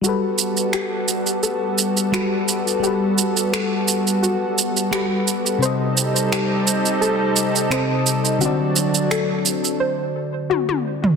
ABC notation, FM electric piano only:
X:1
M:4/4
L:1/8
Q:"Swing 16ths" 1/4=86
K:G
V:1 name="FM electric piano"
[G,FAB]6 [G,FAB]2 | [G,FAB]6 [G,FAB]2 | [C,CA_e]6 [C,CAe]2 | [D,CFd]4 z4 |]